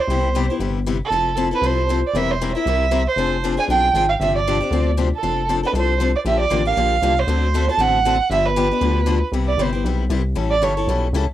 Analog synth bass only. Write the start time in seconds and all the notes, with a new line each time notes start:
0.08 C2
0.59 G1
1.11 F1
1.61 C2
2.14 E1
2.66 C2
3.16 F1
3.68 B1
3.94 G#1
4.20 G1
4.71 D2
5.23 F1
5.73 C2
6.25 A#1
6.51 A1
6.77 A#1
7.02 C2
7.27 D2
7.78 A1
8.30 G1
8.81 D2
9.32 C2
9.57 G1
9.84 B1
10.10 C2
10.36 A1
10.62 G1
10.88 B1
11.13 C#2
11.28 C#2